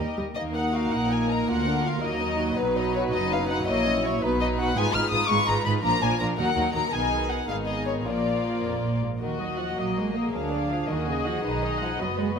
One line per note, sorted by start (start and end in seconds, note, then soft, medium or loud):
0.00 0.18 G4 soft
0.00 0.18 A#4 soft
0.00 0.16 D#5 soft
0.18 0.26 D#2 soft
0.18 0.26 G3 soft
0.35 0.83 D#2 soft
0.35 0.54 A#3 soft
0.35 1.99 A#3 soft
0.35 1.44 D#4 soft
0.35 2.55 A#4 soft
0.35 0.43 D#5 medium
0.55 0.73 D#4 soft
0.55 0.73 F#5 medium
0.73 0.92 F#4 soft
0.73 0.92 F5 medium
0.92 1.38 A#1 soft
0.92 1.39 A#2 soft
0.92 1.11 D#4 soft
0.92 1.11 F#5 medium
1.10 1.29 A#3 soft
1.10 1.29 G#5 medium
1.28 1.47 D#4 soft
1.28 1.48 A#5 medium
1.46 1.94 D2 medium
1.46 1.94 D2 soft
1.46 1.64 A#3 soft
1.46 2.03 F4 soft
1.46 1.85 F#5 medium
1.64 1.84 D4 soft
1.83 2.02 F4 soft
1.83 2.04 F5 soft
2.02 2.49 D#2 soft
2.02 2.50 D#2 soft
2.02 4.20 F#3 soft
2.02 2.19 A#3 soft
2.02 3.69 D#4 soft
2.02 2.58 D#5 medium
2.19 2.39 D#4 soft
2.38 2.57 F#4 soft
2.55 3.04 B1 medium
2.55 3.04 B2 medium
2.55 2.74 B3 soft
2.55 3.65 B4 soft
2.55 2.77 B4 medium
2.75 2.94 D#4 soft
2.75 2.95 D#5 medium
2.94 3.13 F#4 soft
2.94 3.03 C#5 medium
3.12 3.59 F#1 medium
3.12 3.59 F#2 soft
3.12 3.31 D#4 soft
3.12 3.31 D#5 medium
3.31 3.50 B3 soft
3.31 3.50 F5 medium
3.49 3.68 D#4 soft
3.49 3.67 F#5 medium
3.66 4.13 A#1 medium
3.66 4.13 A#2 medium
3.66 3.84 A#3 soft
3.66 4.21 E4 soft
3.66 4.22 C#5 soft
3.66 4.04 D#5 medium
3.85 4.04 C#4 soft
4.04 4.22 E4 soft
4.04 4.23 C#5 medium
4.21 4.67 B1 medium
4.21 4.67 B2 medium
4.21 4.75 F#3 soft
4.21 4.39 B3 soft
4.21 4.74 D#4 soft
4.21 4.76 B4 soft
4.21 4.41 B4 medium
4.40 4.58 D#4 soft
4.40 4.47 D#5 medium
4.58 4.77 F#4 soft
4.58 4.76 F#5 medium
4.76 4.84 G#1 medium
4.76 4.83 G#2 medium
4.76 4.92 G#3 medium
4.76 4.92 D#4 medium
4.76 4.94 F4 medium
4.76 4.93 B4 soft
4.76 4.94 G#5 medium
4.93 5.01 G#1 medium
4.93 5.01 G#2 medium
4.93 5.11 G#3 soft
4.93 5.11 D#4 soft
4.93 5.11 F4 soft
4.93 5.10 B4 soft
4.93 5.12 F6 medium
5.11 5.19 G#1 soft
5.11 5.19 G#2 medium
5.11 5.29 G#3 soft
5.11 5.29 D#4 soft
5.11 5.29 F4 soft
5.11 5.29 B4 soft
5.11 5.29 D#6 medium
5.28 5.37 G#1 medium
5.28 5.37 G#2 medium
5.28 5.46 G#3 soft
5.28 5.45 D#4 soft
5.28 5.47 F4 soft
5.28 5.47 B4 soft
5.28 5.47 C#6 medium
5.47 5.55 G#1 soft
5.47 5.55 G#2 medium
5.47 5.64 G#3 soft
5.47 5.64 D#4 soft
5.47 5.65 F4 soft
5.47 5.65 B4 soft
5.47 5.66 A#5 medium
5.65 5.73 G#1 soft
5.65 5.73 G#2 soft
5.65 5.83 G#3 soft
5.65 5.83 D#4 soft
5.65 5.83 F4 soft
5.65 5.84 B4 soft
5.65 5.72 B5 medium
5.83 5.91 A#1 medium
5.83 5.91 A#2 medium
5.83 6.01 F3 medium
5.83 6.01 D4 medium
5.83 6.01 F4 soft
5.83 6.01 A#4 soft
5.83 6.01 A#5 medium
6.02 6.09 A#1 soft
6.02 6.10 A#2 soft
6.02 6.19 F3 soft
6.02 6.19 D4 soft
6.02 6.19 F4 soft
6.02 6.19 A#4 soft
6.02 6.20 G#5 medium
6.20 6.28 A#1 soft
6.20 6.28 A#2 soft
6.20 6.38 F3 soft
6.20 6.38 D4 soft
6.20 6.38 F4 soft
6.20 6.37 A#4 soft
6.20 6.27 A#5 medium
6.38 6.46 D#2 medium
6.38 6.47 D#3 medium
6.38 6.55 F#3 soft
6.38 6.55 A#3 soft
6.38 6.55 D#4 soft
6.38 6.54 A#4 soft
6.38 6.74 F#5 medium
6.56 6.63 D#2 soft
6.56 6.65 D#3 soft
6.56 6.73 F#3 soft
6.56 6.73 A#3 soft
6.56 6.73 D#4 soft
6.56 6.73 A#4 soft
6.74 6.82 D#2 soft
6.74 6.83 D#3 soft
6.74 6.93 F#3 soft
6.74 6.93 A#3 soft
6.74 6.91 D#4 soft
6.74 6.93 A#4 soft
6.74 6.93 A#5 medium
6.92 7.45 B1 soft
6.92 7.45 B2 medium
6.92 7.45 D#3 soft
6.92 7.45 B3 soft
6.92 7.44 D#4 soft
6.92 7.45 G#4 soft
6.92 7.30 G#5 medium
7.30 7.49 F#5 medium
7.48 8.04 G#1 soft
7.48 8.04 G#2 soft
7.48 8.04 D#3 soft
7.48 8.04 B3 soft
7.48 8.04 D#4 soft
7.48 8.04 G#4 soft
7.48 7.56 F5 medium
7.67 7.86 D#5 medium
7.87 7.94 C#5 soft
8.05 9.00 A#1 soft
8.05 8.58 A#2 soft
8.05 9.02 F3 soft
8.05 9.02 A#3 soft
8.05 9.02 F4 soft
8.05 8.99 D5 soft
8.63 8.81 F2 soft
8.83 9.02 A#2 soft
9.02 9.21 G#2 soft
9.20 9.68 D#2 soft
9.20 9.29 D#3 soft
9.20 9.73 F#4 soft
9.20 10.29 F#4 soft
9.20 9.38 A#4 soft
9.20 10.29 D#5 soft
9.39 9.58 F#3 soft
9.39 9.59 D#5 soft
9.58 9.77 F3 soft
9.58 9.77 F#5 soft
9.77 10.24 A#1 soft
9.77 9.96 F#3 soft
9.77 10.32 A#3 soft
9.77 9.96 D#5 soft
9.96 10.14 G#3 soft
9.96 10.15 A#4 soft
10.14 10.33 A#3 soft
10.14 10.33 D#5 soft
10.32 10.79 D2 soft
10.32 10.69 F#3 medium
10.32 10.89 D4 soft
10.32 11.99 G#4 soft
10.32 10.50 A#4 soft
10.32 10.88 F5 soft
10.52 10.70 D5 soft
10.70 10.88 F3 soft
10.70 10.89 F5 soft
10.88 11.35 D#2 soft
10.88 11.07 D#3 medium
10.88 11.45 F#4 soft
10.88 11.06 A#4 soft
10.88 12.39 D#5 soft
11.08 11.26 C#3 soft
11.08 11.26 D#5 soft
11.26 11.44 F3 medium
11.26 11.44 F#5 soft
11.43 11.90 B1 soft
11.43 11.80 D#3 medium
11.43 11.97 D#4 soft
11.43 11.61 B4 soft
11.63 11.81 D#5 soft
11.81 11.88 F3 medium
11.81 11.99 F#5 soft
11.99 12.39 F#1 soft
11.99 12.07 F#3 medium
11.99 12.39 B3 soft
11.99 12.39 F#4 soft
11.99 12.17 D#5 soft
12.17 12.35 G#3 medium
12.17 12.35 B4 soft
12.36 12.39 A#3 medium
12.36 12.39 D#5 soft